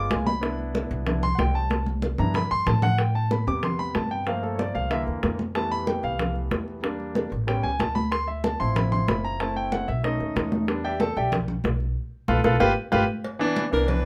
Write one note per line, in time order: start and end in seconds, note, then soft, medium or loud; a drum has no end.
0.00 0.24 G#3 medium
0.00 0.24 B3 medium
0.00 0.25 F4 medium
0.11 0.85 C2 loud
0.11 0.26 G#5 medium
0.11 high bongo medium
0.11 low bongo medium
0.11 high conga medium
0.27 0.56 B5 loud
0.27 high bongo soft
0.27 high conga loud
0.41 1.05 B3 medium
0.41 1.06 D4 medium
0.41 1.06 E4 medium
0.41 high bongo medium
0.41 high conga soft
0.59 high conga soft
0.75 high bongo medium
0.75 high conga loud
0.91 1.36 C2 loud
0.91 high conga soft
1.07 1.21 B3 medium
1.07 1.21 D4 soft
1.07 1.22 E4 medium
1.07 high bongo medium
1.07 high conga soft
1.07 low conga medium
1.23 1.39 C6 loud
1.23 high conga soft
1.23 low conga medium
1.35 2.13 C2 medium
1.35 1.37 F#5 medium
1.35 high bongo medium
1.35 low bongo medium
1.35 high conga medium
1.40 1.55 G5 medium
1.55 1.85 A5 medium
1.55 high conga soft
1.70 high bongo medium
1.70 high conga medium
1.86 high conga medium
2.02 high bongo medium
2.02 high conga medium
2.18 2.49 G2 loud
2.18 2.40 B3 medium
2.18 2.40 D4 medium
2.18 2.41 E4 medium
2.18 2.35 A#5 medium
2.18 high bongo soft
2.18 low conga medium
2.34 2.51 B5 loud
2.34 high bongo medium
2.34 low conga loud
2.51 2.66 G2 medium
2.51 2.67 C6 loud
2.51 high bongo soft
2.66 3.42 A2 loud
2.66 2.83 A5 medium
2.66 high bongo medium
2.66 low bongo medium
2.66 low conga medium
2.82 2.99 F#5 loud
2.82 high bongo soft
2.82 low conga loud
2.98 3.15 G5 medium
2.98 high bongo medium
2.98 high conga soft
3.15 3.31 A5 medium
3.15 high conga soft
3.31 3.47 B5 medium
3.31 high bongo medium
3.31 high conga loud
3.47 3.92 E2 medium
3.47 4.23 C3 medium
3.47 4.24 G3 soft
3.47 4.24 B3 medium
3.47 3.63 D6 loud
3.47 high conga soft
3.63 3.79 C6 medium
3.63 high bongo medium
3.63 high conga soft
3.63 low conga medium
3.79 3.95 B5 loud
3.79 high conga soft
3.95 4.70 G2 medium
3.95 4.11 A5 medium
3.95 high bongo medium
3.95 low bongo medium
3.95 high conga medium
4.11 4.27 G5 medium
4.11 high conga soft
4.27 4.88 F3 medium
4.27 4.88 A3 medium
4.27 4.88 A#3 medium
4.27 4.43 F5 medium
4.27 high bongo medium
4.27 high conga soft
4.43 4.59 A4 medium
4.43 high conga soft
4.55 4.57 C#5 medium
4.55 high bongo medium
4.59 4.75 D5 medium
4.59 high conga loud
4.75 5.05 C2 loud
4.75 4.91 F5 medium
4.75 high bongo soft
4.90 5.37 D3 medium
4.90 5.37 E3 medium
4.90 5.37 A#3 medium
4.90 5.01 E5 loud
4.90 high bongo medium
4.90 high conga soft
5.07 5.22 E2 medium
5.07 high bongo soft
5.07 high conga soft
5.23 5.98 F2 loud
5.23 high bongo medium
5.23 low bongo medium
5.23 high conga medium
5.39 high bongo soft
5.39 high conga loud
5.55 6.79 E3 medium
5.55 6.80 G3 medium
5.55 6.80 A3 medium
5.55 6.80 B3 medium
5.55 5.71 A5 loud
5.55 high bongo medium
5.55 high conga soft
5.71 5.87 B5 loud
5.71 high conga soft
5.87 6.03 G5 medium
5.87 high bongo medium
5.87 high conga medium
6.03 6.48 C2 medium
6.03 6.34 F5 medium
6.03 high conga soft
6.19 high bongo medium
6.19 high conga soft
6.19 low conga medium
6.36 high conga soft
6.51 7.26 E2 medium
6.51 high bongo medium
6.51 low bongo medium
6.51 high conga medium
6.68 high conga soft
6.83 7.29 G3 medium
6.83 7.29 A#3 medium
6.83 7.30 D4 medium
6.83 high bongo medium
6.83 high conga soft
7.00 high conga soft
7.15 high bongo medium
7.15 high conga medium
7.32 7.62 A1 loud
7.32 high bongo soft
7.47 7.69 G3 medium
7.47 7.69 B3 medium
7.47 7.69 C#4 medium
7.47 7.64 G5 medium
7.47 high bongo medium
7.47 high conga soft
7.63 7.79 C#2 medium
7.63 7.79 G#5 loud
7.63 high bongo soft
7.63 high conga soft
7.79 8.55 D2 medium
7.79 7.95 A5 medium
7.79 high bongo medium
7.79 low bongo medium
7.79 high conga medium
7.95 8.11 B5 loud
7.95 high bongo soft
7.95 high conga medium
8.12 8.27 C6 loud
8.12 high bongo medium
8.27 8.43 E5 medium
8.27 high conga soft
8.44 8.60 A5 medium
8.44 high bongo medium
8.44 high conga loud
8.59 9.05 A1 loud
8.59 9.36 F3 medium
8.59 9.36 C4 medium
8.59 9.36 E4 medium
8.59 8.76 C6 loud
8.59 high conga soft
8.76 8.92 B5 medium
8.76 high bongo medium
8.76 high conga soft
8.76 low conga medium
8.92 9.08 C6 loud
8.92 high conga soft
8.92 low conga medium
9.08 9.83 F#1 medium
9.08 9.24 B5 medium
9.08 high bongo medium
9.08 low bongo medium
9.08 high conga medium
9.24 9.40 A#5 medium
9.24 high conga soft
9.40 9.86 A3 medium
9.40 9.86 C4 medium
9.40 9.86 E4 medium
9.40 9.56 A5 medium
9.40 high bongo medium
9.40 high conga soft
9.56 9.72 G5 medium
9.56 high conga soft
9.72 9.88 F#5 medium
9.72 high bongo medium
9.72 high conga medium
9.88 10.18 B1 medium
9.88 10.04 E5 medium
9.88 high bongo soft
10.04 10.65 A3 medium
10.04 10.65 C#4 soft
10.04 10.66 D#4 medium
10.04 10.49 D#5 medium
10.04 high bongo medium
10.04 high conga soft
10.20 10.35 D#2 medium
10.20 high bongo soft
10.20 high conga soft
10.36 11.11 E2 loud
10.36 high bongo medium
10.36 low bongo medium
10.36 high conga medium
10.52 high bongo soft
10.52 high conga loud
10.68 10.89 G3 medium
10.68 10.90 B3 medium
10.68 10.90 D4 medium
10.68 high bongo medium
10.68 high conga soft
10.84 11.00 G4 medium
10.84 11.00 D5 medium
10.84 11.00 E5 medium
10.84 11.00 G5 loud
10.84 high conga soft
11.00 11.16 A4 medium
11.00 11.16 A5 medium
11.00 high bongo medium
11.00 high conga loud
11.16 11.61 B1 loud
11.16 11.32 G4 medium
11.16 11.32 D5 medium
11.16 11.32 E5 medium
11.16 11.32 G5 medium
11.16 high conga soft
11.32 high bongo medium
11.32 high conga soft
11.32 low conga medium
11.48 high conga soft
11.48 low conga medium
11.64 11.94 B1 medium
11.64 high bongo medium
11.64 low bongo medium
11.64 high conga medium
11.80 high conga soft
12.28 12.40 B1 loud
12.28 12.39 F4 loud
12.28 12.39 A4 medium
12.28 12.39 B4 medium
12.28 high bongo loud
12.28 high conga loud
12.44 12.56 B1 loud
12.44 12.55 F4 medium
12.44 12.55 A4 loud
12.44 12.55 B4 medium
12.44 high bongo loud
12.44 high conga loud
12.60 12.72 G1 medium
12.60 12.70 F4 loud
12.60 12.70 G4 loud
12.60 12.71 B4 loud
12.60 high bongo loud
12.60 high conga loud
12.92 13.04 G1 loud
12.92 13.02 F4 loud
12.92 13.02 G4 loud
12.92 13.02 B4 loud
12.92 high bongo loud
12.92 high conga loud
13.24 cowbell medium
13.24 high conga soft
13.39 13.62 E3 loud
13.39 13.63 B3 medium
13.39 13.63 D4 loud
13.39 high conga soft
13.56 cowbell medium
13.56 high conga loud
13.71 14.05 C2 loud
13.71 14.05 E3 medium
13.71 14.05 B3 medium
13.71 14.05 D4 medium
13.71 13.91 A#4 loud
13.71 high conga soft
13.88 14.05 B4 loud
13.88 cowbell loud
13.88 high conga soft
13.88 low conga medium